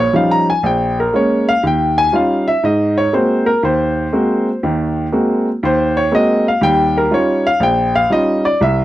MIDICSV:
0, 0, Header, 1, 2, 480
1, 0, Start_track
1, 0, Tempo, 498753
1, 597, Time_signature, 4, 2, 24, 8
1, 8513, End_track
2, 0, Start_track
2, 0, Title_t, "Grand piano"
2, 0, Program_c, 0, 0
2, 0, Note_on_c, 0, 73, 91
2, 123, Note_off_c, 0, 73, 0
2, 128, Note_on_c, 0, 53, 52
2, 128, Note_on_c, 0, 55, 46
2, 133, Note_on_c, 0, 61, 45
2, 138, Note_on_c, 0, 63, 56
2, 152, Note_on_c, 0, 77, 72
2, 290, Note_off_c, 0, 77, 0
2, 302, Note_on_c, 0, 82, 88
2, 445, Note_off_c, 0, 82, 0
2, 467, Note_off_c, 0, 53, 0
2, 467, Note_off_c, 0, 55, 0
2, 470, Note_off_c, 0, 61, 0
2, 472, Note_off_c, 0, 63, 0
2, 479, Note_on_c, 0, 80, 81
2, 609, Note_on_c, 0, 34, 66
2, 613, Note_off_c, 0, 80, 0
2, 636, Note_on_c, 0, 79, 78
2, 937, Note_off_c, 0, 79, 0
2, 961, Note_on_c, 0, 70, 66
2, 1022, Note_off_c, 0, 34, 0
2, 1087, Note_on_c, 0, 56, 51
2, 1090, Note_off_c, 0, 70, 0
2, 1095, Note_on_c, 0, 58, 45
2, 1099, Note_on_c, 0, 61, 51
2, 1114, Note_on_c, 0, 73, 72
2, 1416, Note_off_c, 0, 73, 0
2, 1427, Note_off_c, 0, 56, 0
2, 1430, Note_on_c, 0, 77, 89
2, 1431, Note_off_c, 0, 58, 0
2, 1433, Note_off_c, 0, 61, 0
2, 1564, Note_off_c, 0, 77, 0
2, 1571, Note_on_c, 0, 39, 66
2, 1607, Note_on_c, 0, 79, 78
2, 1903, Note_off_c, 0, 79, 0
2, 1905, Note_on_c, 0, 80, 98
2, 1983, Note_off_c, 0, 39, 0
2, 2042, Note_off_c, 0, 80, 0
2, 2044, Note_on_c, 0, 55, 47
2, 2050, Note_on_c, 0, 61, 46
2, 2050, Note_on_c, 0, 63, 47
2, 2054, Note_on_c, 0, 65, 56
2, 2074, Note_on_c, 0, 77, 70
2, 2376, Note_off_c, 0, 77, 0
2, 2383, Note_on_c, 0, 76, 84
2, 2385, Note_off_c, 0, 55, 0
2, 2388, Note_off_c, 0, 61, 0
2, 2388, Note_off_c, 0, 63, 0
2, 2390, Note_off_c, 0, 65, 0
2, 2521, Note_off_c, 0, 76, 0
2, 2535, Note_on_c, 0, 44, 67
2, 2549, Note_on_c, 0, 75, 73
2, 2853, Note_off_c, 0, 75, 0
2, 2864, Note_on_c, 0, 73, 87
2, 2945, Note_off_c, 0, 44, 0
2, 3001, Note_off_c, 0, 73, 0
2, 3009, Note_on_c, 0, 56, 51
2, 3014, Note_on_c, 0, 58, 43
2, 3017, Note_on_c, 0, 60, 42
2, 3017, Note_on_c, 0, 66, 52
2, 3022, Note_on_c, 0, 72, 72
2, 3330, Note_off_c, 0, 72, 0
2, 3333, Note_on_c, 0, 70, 82
2, 3348, Note_off_c, 0, 56, 0
2, 3350, Note_off_c, 0, 58, 0
2, 3352, Note_off_c, 0, 60, 0
2, 3352, Note_off_c, 0, 66, 0
2, 3476, Note_off_c, 0, 70, 0
2, 3493, Note_on_c, 0, 39, 66
2, 3511, Note_on_c, 0, 72, 76
2, 3904, Note_off_c, 0, 39, 0
2, 3970, Note_on_c, 0, 56, 53
2, 3971, Note_on_c, 0, 58, 46
2, 3973, Note_on_c, 0, 60, 46
2, 3978, Note_on_c, 0, 66, 57
2, 4309, Note_off_c, 0, 56, 0
2, 4309, Note_off_c, 0, 58, 0
2, 4310, Note_off_c, 0, 60, 0
2, 4313, Note_off_c, 0, 66, 0
2, 4416, Note_off_c, 0, 72, 0
2, 4458, Note_on_c, 0, 39, 62
2, 4458, Note_on_c, 0, 51, 63
2, 4867, Note_off_c, 0, 39, 0
2, 4867, Note_off_c, 0, 51, 0
2, 4930, Note_on_c, 0, 56, 48
2, 4931, Note_on_c, 0, 58, 44
2, 4935, Note_on_c, 0, 66, 53
2, 4937, Note_on_c, 0, 60, 43
2, 5269, Note_off_c, 0, 56, 0
2, 5269, Note_off_c, 0, 58, 0
2, 5271, Note_off_c, 0, 66, 0
2, 5272, Note_off_c, 0, 60, 0
2, 5419, Note_on_c, 0, 39, 70
2, 5441, Note_on_c, 0, 72, 81
2, 5740, Note_off_c, 0, 72, 0
2, 5745, Note_on_c, 0, 73, 85
2, 5828, Note_off_c, 0, 39, 0
2, 5882, Note_off_c, 0, 73, 0
2, 5884, Note_on_c, 0, 56, 53
2, 5888, Note_on_c, 0, 58, 49
2, 5889, Note_on_c, 0, 60, 48
2, 5889, Note_on_c, 0, 66, 58
2, 5916, Note_on_c, 0, 75, 82
2, 6217, Note_off_c, 0, 75, 0
2, 6226, Note_off_c, 0, 56, 0
2, 6228, Note_off_c, 0, 58, 0
2, 6228, Note_off_c, 0, 60, 0
2, 6228, Note_off_c, 0, 66, 0
2, 6239, Note_on_c, 0, 77, 81
2, 6361, Note_on_c, 0, 55, 69
2, 6364, Note_on_c, 0, 39, 69
2, 6369, Note_off_c, 0, 77, 0
2, 6383, Note_on_c, 0, 79, 99
2, 6691, Note_off_c, 0, 79, 0
2, 6713, Note_on_c, 0, 70, 76
2, 6778, Note_off_c, 0, 55, 0
2, 6779, Note_off_c, 0, 39, 0
2, 6839, Note_on_c, 0, 55, 46
2, 6844, Note_on_c, 0, 61, 46
2, 6844, Note_on_c, 0, 63, 45
2, 6846, Note_off_c, 0, 70, 0
2, 6849, Note_on_c, 0, 65, 58
2, 6871, Note_on_c, 0, 73, 79
2, 7175, Note_off_c, 0, 73, 0
2, 7183, Note_off_c, 0, 55, 0
2, 7185, Note_off_c, 0, 61, 0
2, 7185, Note_on_c, 0, 77, 95
2, 7186, Note_off_c, 0, 63, 0
2, 7188, Note_off_c, 0, 65, 0
2, 7315, Note_on_c, 0, 34, 71
2, 7322, Note_off_c, 0, 77, 0
2, 7344, Note_on_c, 0, 79, 92
2, 7651, Note_off_c, 0, 79, 0
2, 7656, Note_on_c, 0, 77, 90
2, 7734, Note_off_c, 0, 34, 0
2, 7794, Note_on_c, 0, 55, 53
2, 7797, Note_off_c, 0, 77, 0
2, 7801, Note_on_c, 0, 61, 47
2, 7801, Note_on_c, 0, 63, 49
2, 7805, Note_on_c, 0, 65, 58
2, 7819, Note_on_c, 0, 75, 85
2, 8128, Note_off_c, 0, 75, 0
2, 8134, Note_on_c, 0, 74, 83
2, 8140, Note_off_c, 0, 55, 0
2, 8144, Note_off_c, 0, 61, 0
2, 8144, Note_off_c, 0, 63, 0
2, 8146, Note_off_c, 0, 65, 0
2, 8276, Note_off_c, 0, 74, 0
2, 8285, Note_on_c, 0, 36, 68
2, 8301, Note_on_c, 0, 76, 79
2, 8513, Note_off_c, 0, 36, 0
2, 8513, Note_off_c, 0, 76, 0
2, 8513, End_track
0, 0, End_of_file